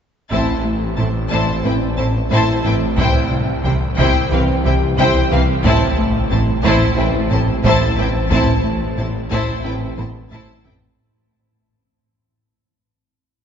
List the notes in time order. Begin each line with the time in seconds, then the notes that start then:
0.31 A1 A2 E3 A3 C4 E4 C5 A5, taiko
0.65 A3
0.98 A1 A2 C4 E4 C5 A5
1.31 A1 A2 A3 E4 C5 D5 A5
1.64 A1 A2 E3 C4 E4 B4 G5
1.97 A1 A2 C4 E4 C5 A5
2.30 A1 A2 A3 E4 A4 C5 A5
2.64 A1 A2 C4 E4 B4 G5
2.97 C2 C3 E3 C4 E4 C5 G5, taiko
3.31 C3
3.64 C2 C3 E3 E4 C5 G5
3.98 C2 C3 E4 C5 G5, taiko
4.31 C2 C3 E3 C4 B4 F5
4.64 C2 C3 E3 E4 G4 C5 G5
4.98 C2 C3 E4 C5 G5, taiko
5.31 C2 C3 E3 B4 F5
5.64 A1 A2 E3 A3 C4 E4 C5 A5, taiko
5.98 A3
6.31 A1 A2 C4 E4 C5 A5
6.64 A1 A2 A3 E4 C5 A5, taiko
6.97 A1 A2 E3 C4 E4 B4 E5 G5
7.31 A1 A2 C4 E4 C5 A5
7.64 A1 A2 A3 E4 C5 A5, taiko
7.97 A1 A2 C4 E4 B4 G5
8.30 A1 A2 E3 A3 C4 E4 C5 A5, taiko
8.64 A3
8.98 A1 A2 C4 E4 C5 A5
9.31 A1 A2 A3 E4 C5 A5, taiko
9.64 A1 A2 E3 C4 E4 B4 G5
9.97 A1 A2 B3 C4 E4 C5 A5 B5, taiko high
10.31 A1 A2 A3 E4 C5 A5, taiko low-mid
10.64 A1 A2 C4 E4 B4 G5, taiko low